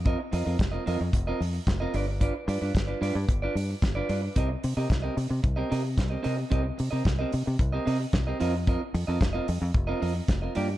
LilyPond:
<<
  \new Staff \with { instrumentName = "Clean electric guitar" } { \time 4/4 \key c \minor \tempo 4 = 111 <c' f' bes' ees''>16 r16 <c' f' bes' ees''>16 <c' f' bes' ees''>16 r16 <c' f' bes' ees''>16 <c' f' bes' ees''>16 r8 <c' f' bes' ees''>16 r8. <c' f' bes' ees''>16 <d' f' b' d''>16 r16 | <d' f' b' d''>16 r16 <d' f' b' d''>16 <d' f' b' d''>16 r16 <d' f' b' d''>16 <d' f' b' d''>16 r8 <d' f' b' d''>16 r8. <d' f' b' d''>16 <d' f' b' d''>16 r16 | <c' g' bes' ees''>16 r8 <c' g' bes' ees''>16 r16 <c' g' bes' ees''>16 r8. <c' g' bes' ees''>16 <c' g' bes' ees''>16 r8 <c' g' bes' ees''>16 <c' g' bes' ees''>16 r16 | <c' g' bes' ees''>16 r8 <c' g' bes' ees''>16 r16 <c' g' bes' ees''>16 r8. <c' g' bes' ees''>16 <c' g' bes' ees''>16 r8 <c' g' bes' ees''>16 <c' f' bes' ees''>16 r16 |
<c' f' bes' ees''>16 r8 <c' f' bes' ees''>16 r16 <c' f' bes' ees''>16 r8. <c' f' bes' ees''>16 <c' f' bes' ees''>16 r8 <c' f' bes' ees''>16 <bes f' g' d''>16 r16 | }
  \new Staff \with { instrumentName = "Fingered electric bass" } { \clef bass \time 4/4 \key c \minor f,8 f,16 f,16 f,,8 f,16 f,16 f,,8 f,8 f,,8 g,,8~ | g,,8 g,16 g,16 g,,8 g,16 g,16 g,,8 g,8 g,,8 g,8 | c,8 c16 c16 c,8 c16 c16 c,8 c8 c,8 c8 | c,8 c16 c16 c,8 c16 c16 c,8 c8 c,8 f,8~ |
f,8 f,16 f,16 f,,8 f,16 f,16 f,,8 f,8 f,,8 g,8 | }
  \new DrumStaff \with { instrumentName = "Drums" } \drummode { \time 4/4 <hh bd>8 hho8 <hh bd sn>8 hho8 <hh bd>8 hho8 <hh bd sn>8 hho8 | <hh bd>8 hho8 <hh bd sn>8 hho8 <hh bd>8 hho8 <hh bd sn>8 hho8 | <hh bd>8 hho8 <hh bd sn>8 hho8 <hh bd>8 hho8 <hh bd sn>8 hho8 | <hh bd>8 hho8 <hh bd sn>8 hho8 <hh bd>8 hho8 <hh bd sn>8 hho8 |
<hh bd>8 hho8 <hh bd sn>8 hho8 <hh bd>8 hho8 <hh bd sn>8 hho8 | }
>>